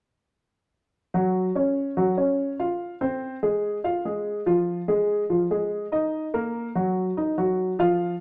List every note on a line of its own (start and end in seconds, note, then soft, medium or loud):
1.14 1.48 F#3 medium
1.14 1.48 F#4 medium
1.55 1.90 C#4 medium
1.55 1.90 C#5 medium
1.97 2.14 F#3 medium
1.97 2.14 F#4 medium
2.17 2.52 C#4 medium
2.17 2.52 C#5 medium
2.59 2.94 F4 medium
2.59 2.94 F5 medium
3.01 3.35 C4 medium
3.01 3.35 C5 medium
3.43 3.77 G#3 medium
3.43 3.77 G#4 medium
3.84 4.01 F4 medium
3.84 4.01 F5 medium
4.05 4.39 G#3 medium
4.05 4.39 G#4 medium
4.46 4.80 F3 medium
4.46 4.81 F4 medium
4.88 5.22 G#3 medium
4.88 5.22 G#4 medium
5.30 5.47 F3 medium
5.30 5.47 F4 medium
5.51 5.84 G#3 medium
5.51 5.85 G#4 medium
5.92 6.26 D#4 medium
5.92 6.26 D#5 medium
6.34 6.68 A#3 medium
6.34 6.68 A#4 medium
6.75 7.09 F#3 medium
6.75 7.09 F#4 medium
7.17 7.34 D#4 medium
7.17 7.34 D#5 medium
7.38 7.71 F#3 medium
7.38 7.72 F#4 medium
7.79 8.13 F3 medium
7.79 8.13 F4 medium
7.79 8.13 F5 medium